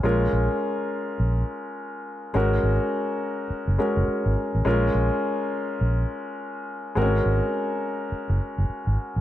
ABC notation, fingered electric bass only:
X:1
M:4/4
L:1/16
Q:"Swing 16ths" 1/4=104
K:Bbm
V:1 name="Fingered electric bass" clef=bass
B,,,2 B,,, z4 z B,,,2 z6 | A,,,2 A,,, z6 G,,, z G,,, z A,,, z =A,,, | B,,,2 B,,, z4 z B,,,2 z6 | A,,,2 A,,, z6 G,,, z G,,, z A,,, z =A,,, |]